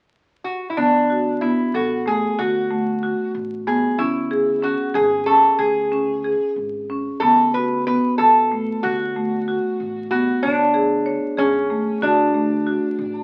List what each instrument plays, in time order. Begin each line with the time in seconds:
0.44 resonator guitar played with a steel bar F#4
0.70 resonator guitar played with a steel bar E4
0.77 upright bass D2, marimba B3, resonator guitar played with a steel bar D4
1.10 marimba F#4
1.41 marimba B3, resonator guitar played with a steel bar E4
1.74 upright bass A1, resonator guitar played with a steel bar F#4, marimba A4
2.06 marimba A3, resonator guitar played with a steel bar G#4
2.38 upright bass D2, marimba F#4, resonator guitar played with a steel bar F#4
2.71 marimba A3
3.03 marimba F#4
3.34 upright bass A1
3.67 marimba B3, resonator guitar played with a steel bar G#4
3.98 upright bass D2, marimba C#4, resonator guitar played with a steel bar E4
4.31 marimba G#4
4.63 marimba C#4, resonator guitar played with a steel bar F#4
4.94 upright bass G#1, marimba G#4, resonator guitar played with a steel bar G#4
5.26 marimba C#4, resonator guitar played with a steel bar A4
5.59 upright bass D2, resonator guitar played with a steel bar G#4, marimba G#4
5.92 marimba C#4
6.24 marimba G#4
6.56 upright bass G#1
6.90 marimba C#4
7.20 upright bass D2, marimba B3, resonator guitar played with a steel bar A4
7.54 marimba F#4, resonator guitar played with a steel bar B4
7.87 marimba B3, resonator guitar played with a steel bar B4
8.18 upright bass A1, resonator guitar played with a steel bar A4, marimba A4
8.52 marimba A3
8.83 upright bass D2, resonator guitar played with a steel bar F#4, marimba F#4
9.16 marimba A3
9.48 marimba F#4
9.80 upright bass A1
10.11 marimba B3, resonator guitar played with a steel bar F#4
10.43 upright bass D2, resonator guitar played with a steel bar D4, marimba C#5
10.74 marimba G#4
11.06 marimba C#5
11.37 upright bass G#1, resonator guitar played with a steel bar C#4, marimba G#4
11.70 marimba A3
12.02 upright bass D2, resonator guitar played with a steel bar D4, marimba F#4
12.34 marimba A3
12.67 marimba F#4
12.98 upright bass A1